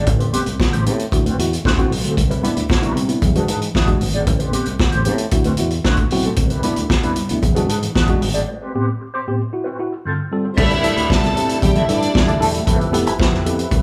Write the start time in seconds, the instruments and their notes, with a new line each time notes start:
0.07 fingered electric bass A1, tine electric piano A2 E3, muted clean electric guitar stroke, kick, closed hi-hat, muted conga
0.19 clean electric guitar C4 G4 B4, tine electric piano C4 G4, closed hi-hat
0.33 tine electric piano B3 C4 G4, clean electric guitar C4 G4 B4, closed hi-hat, muted conga
0.46 fingered electric bass C2, muted clean electric guitar stroke, closed hi-hat
0.60 tine electric piano C4 G4, muted clean electric guitar stroke, kick, snare, high conga
0.73 fingered electric bass A1, tine electric piano A2 E3, clean electric guitar C4 G4 C5, closed hi-hat
0.86 fingered electric bass A2, tine electric piano B3 C4 G4, muted clean electric guitar stroke, closed hi-hat
0.99 muted clean electric guitar stroke, closed hi-hat
1.11 fingered electric bass D2, tine electric piano E4 F#4, muted clean electric guitar stroke, kick, closed hi-hat, muted conga
1.26 tine electric piano D3 A3, clean electric guitar C4 F#4 B4, closed hi-hat
1.38 fingered electric bass E2, tine electric piano E4 F#4, muted clean electric guitar stroke, closed hi-hat
1.52 muted clean electric guitar stroke, closed hi-hat
1.64 fingered electric bass D2, clean electric guitar C4 F#4 B4, kick, snare, high conga
1.78 tine electric piano C4 E4 F#4, muted clean electric guitar stroke, kick, closed hi-hat
1.90 fingered electric bass B1, muted clean electric guitar stroke, open hi-hat, high conga
2.04 tine electric piano D3 A3, clean electric guitar C4 F#4 A4, closed hi-hat
2.17 fingered electric bass C2, tine electric piano C3 G3, muted clean electric guitar stroke, kick, closed hi-hat, muted conga
2.30 clean electric guitar E4 G4 B4, closed hi-hat
2.43 tine electric piano B3 D4 E4, clean electric guitar E4 G4 B4, closed hi-hat, muted conga
2.56 fingered electric bass D2, tine electric piano D4 E4, muted clean electric guitar stroke, closed hi-hat
2.69 kick, snare, high conga
2.82 fingered electric bass C2, tine electric piano B3 D4 E4, clean electric guitar E4 G4 B4, closed hi-hat
2.95 fingered electric bass C3, tine electric piano C3 G3, muted clean electric guitar stroke, closed hi-hat
3.08 tine electric piano B3 D4 E4, muted clean electric guitar stroke, closed hi-hat
3.22 fingered electric bass E2, muted clean electric guitar stroke, kick, closed hi-hat, muted conga, low conga
3.35 tine electric piano G#3 D4 F#4, clean electric guitar D4 G#4 B4, closed hi-hat
3.48 fingered electric bass G#2, clean electric guitar D4 G#4 B4, closed hi-hat
3.61 tine electric piano E3, muted clean electric guitar stroke, closed hi-hat
3.75 fingered electric bass E2, tine electric piano E3, clean electric guitar D4 G#4 B4, kick, snare, high conga
3.87 tine electric piano G#3 D4 F#4, muted clean electric guitar stroke, kick, closed hi-hat
4.01 fingered electric bass G#1, tine electric piano D4 F#4, muted clean electric guitar stroke, open hi-hat, high conga
4.13 clean electric guitar D4 G#4 D5, closed hi-hat, high conga
4.27 fingered electric bass A1, tine electric piano A2 E3, muted clean electric guitar stroke, kick, closed hi-hat, muted conga
4.39 tine electric piano C4 G4, clean electric guitar C4 G4 B4, closed hi-hat
4.53 tine electric piano B3 C4 G4, clean electric guitar C4 G4 B4, closed hi-hat, muted conga
4.66 fingered electric bass C2, muted clean electric guitar stroke, closed hi-hat
4.79 tine electric piano C4 G4, kick, snare, high conga
4.92 fingered electric bass A1, tine electric piano A2 E3, clean electric guitar C4 G4 C5, closed hi-hat
5.05 fingered electric bass A2, tine electric piano B3 C4 G4, muted clean electric guitar stroke, closed hi-hat
5.18 muted clean electric guitar stroke, closed hi-hat
5.31 fingered electric bass D2, tine electric piano E4 F#4, muted clean electric guitar stroke, kick, closed hi-hat, muted conga
5.44 tine electric piano D3 A3, clean electric guitar C4 F#4 B4, closed hi-hat
5.57 fingered electric bass E2, tine electric piano E4 F#4, closed hi-hat
5.71 muted clean electric guitar stroke, closed hi-hat
5.84 fingered electric bass D2, clean electric guitar C4 F#4 B4, kick, snare, high conga
5.97 muted clean electric guitar stroke, kick, closed hi-hat
6.11 fingered electric bass B1, tine electric piano C4 E4 F#4, muted clean electric guitar stroke, open hi-hat, high conga
6.23 clean electric guitar C4 F#4 A4, closed hi-hat, high conga
6.36 fingered electric bass C2, tine electric piano C3 G3, muted clean electric guitar stroke, kick, closed hi-hat, muted conga
6.50 clean electric guitar E4 G4 B4, closed hi-hat
6.63 tine electric piano B3 D4 E4, clean electric guitar E4 G4 B4, closed hi-hat, muted conga
6.76 fingered electric bass D2, tine electric piano D4 E4, muted clean electric guitar stroke, closed hi-hat
6.89 muted clean electric guitar stroke, kick, snare, high conga
7.02 fingered electric bass C2, tine electric piano B3 D4 E4, clean electric guitar E4 G4 B4, closed hi-hat
7.15 tine electric piano C3 G3, muted clean electric guitar stroke, closed hi-hat
7.29 fingered electric bass D2, tine electric piano B3 D4 E4, muted clean electric guitar stroke, closed hi-hat
7.41 fingered electric bass E2, muted clean electric guitar stroke, kick, closed hi-hat, muted conga, low conga
7.55 tine electric piano G#3 D4 F#4, clean electric guitar D4 G#4 B4, closed hi-hat
7.68 fingered electric bass G#2, clean electric guitar D4 G#4 B4, closed hi-hat
7.83 tine electric piano E3, muted clean electric guitar stroke, closed hi-hat
7.95 fingered electric bass E2, tine electric piano E3, clean electric guitar D4 G#4 B4, kick, snare, high conga
8.07 tine electric piano G#3 D4 F#4, muted clean electric guitar stroke, kick, closed hi-hat
8.21 fingered electric bass G#1, tine electric piano D4 F#4, muted clean electric guitar stroke, open hi-hat, high conga
8.34 clean electric guitar D4 G#4 D5, closed hi-hat, high conga
8.48 muted clean electric guitar stroke
8.62 tine electric piano C4 G4, clean electric guitar C4 G4 B4
8.75 tine electric piano A2 B3 C4 G4, clean electric guitar C4 G4 B4
8.89 muted clean electric guitar stroke
9.01 tine electric piano C4 G4, muted clean electric guitar stroke
9.14 clean electric guitar C4 G4 C5
9.27 tine electric piano A2 B3 C4 G4, muted clean electric guitar stroke
9.39 muted clean electric guitar stroke
9.53 tine electric piano E4 F#4, muted clean electric guitar stroke
9.64 clean electric guitar C4 F#4 B4
9.79 tine electric piano E4 F#4, muted clean electric guitar stroke
9.93 muted clean electric guitar stroke
10.05 tine electric piano G2 D3, clean electric guitar C4 F4 A4
10.20 muted clean electric guitar stroke
10.32 tine electric piano G3 C4 F4 A4, muted clean electric guitar stroke
10.45 clean electric guitar C4 F4 G4, tine electric piano F4 A4
10.56 fingered electric bass C2, tonewheel organ C3 G3 A3 D4 E4, tine electric piano C3 G3, clean electric guitar D4 E4 A4, string section E4 E5, kick, crash, muted conga
10.70 muted clean electric guitar stroke, closed hi-hat
10.83 tine electric piano D4 E4 A4, muted clean electric guitar stroke, closed hi-hat, muted conga
10.96 fingered electric bass D2, clean electric guitar D4 E4 B4, tine electric piano E4 A4, closed hi-hat
11.09 tine electric piano C3 G3, string section A4 A5, muted clean electric guitar stroke, kick, snare, high conga
11.23 fingered electric bass C2, snare, closed hi-hat
11.36 fingered electric bass C3, tine electric piano D4 E4 A4, closed hi-hat, muted conga
11.49 tine electric piano E4 A4, muted clean electric guitar stroke, closed hi-hat
11.61 fingered electric bass E2, tine electric piano C3 G3, string section G4 G5, muted clean electric guitar stroke, kick, closed hi-hat, muted conga, low conga
11.74 clean electric guitar D4 E4 A4, string section E4 E5, closed hi-hat
11.88 fingered electric bass G2, tine electric piano D4 E4 A4, string section D4 D5, muted clean electric guitar stroke, closed hi-hat
12.01 tine electric piano E4 A4, muted clean electric guitar stroke, closed hi-hat
12.14 fingered electric bass E2, tine electric piano C3 G3, muted clean electric guitar stroke, kick, snare, high conga
12.27 clean electric guitar D4 E4 A4, closed hi-hat
12.40 fingered electric bass E1, clean electric guitar D4 E4 A4, tine electric piano D4 E4 A4, open hi-hat, high conga
12.53 tine electric piano E4 A4, muted clean electric guitar stroke, closed hi-hat, high conga
12.66 fingered electric bass F1, tonewheel organ F3 C4 G4 A4 B4, tine electric piano F3, clean electric guitar B3 E4 A4, kick, closed hi-hat, muted conga
12.80 muted clean electric guitar stroke, closed hi-hat
12.92 tine electric piano B3 E4 G4 A4, muted clean electric guitar stroke, closed hi-hat, muted conga
13.06 fingered electric bass G1, clean electric guitar B3 E4 B4, tine electric piano G4 A4, closed hi-hat
13.19 tine electric piano F3, muted clean electric guitar stroke, kick, snare, high conga
13.32 fingered electric bass F1, muted clean electric guitar stroke, snare
13.45 fingered electric bass F2, tine electric piano B3 E4 G4 A4, closed hi-hat
13.57 tine electric piano G4 A4, muted clean electric guitar stroke, closed hi-hat
13.71 fingered electric bass C2, tine electric piano F3, muted clean electric guitar stroke, kick, closed hi-hat, muted conga